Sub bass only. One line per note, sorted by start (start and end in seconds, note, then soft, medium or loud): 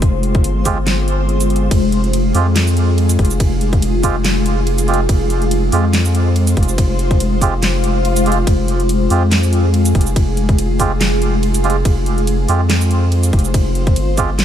0.00 0.43 F1 loud
0.44 1.70 G1 loud
1.71 2.33 F1 medium
2.34 3.17 F2 loud
3.19 3.81 F1 loud
3.82 5.07 F1 loud
5.09 5.71 F1 loud
5.72 6.55 F2 loud
6.57 7.19 F1 medium
7.20 8.46 F1 loud
8.47 9.09 F1 loud
9.10 9.93 F2 loud
9.95 10.57 F1 loud
10.58 11.84 F1 loud
11.85 12.47 F1 loud
12.49 13.32 F2 loud
13.33 13.95 F1 loud
13.97 14.45 G1 loud